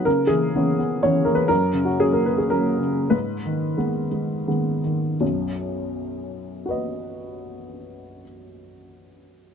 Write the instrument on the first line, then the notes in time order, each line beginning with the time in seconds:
upright piano
0.05 C#3 A#4
0.27 E3 G#4
0.55 E3 B3 C#4
0.79 B3
1.03 E3 B3 C#4 C#5
1.25 E3 A#4
1.35 B4
1.48 F#2 A#4
1.73 C#3
1.85 F#4
2.00 F#3 A#3 C#4 G#4
2.13 A#4
2.26 F#3 B4
2.38 G#4
2.50 F#3 A#3 C#4 A#4
2.78 C#3
3.10 G#2 B4
3.45 D#3
3.77 D#3 G#3 B3
4.11 G#3
4.47 D#3 G#3 B3
4.83 D#3
5.21 B1 F#2
6.66 F#4 B4
6.71 D#5